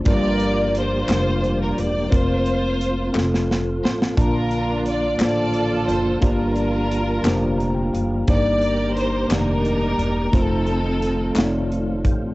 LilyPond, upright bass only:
\new Staff \with { instrumentName = "Upright bass" } { \clef bass \time 6/8 \key g \minor \tempo 4. = 58 g,,4. f,,4 e,,8 | f,,4. f,,4 a,,8 | bes,,4. a,,4 ges,,8 | g,,4. f,,4 ges,,8 |
g,,4. f,,4 e,,8 | f,,4. f,,4 a,,8 | }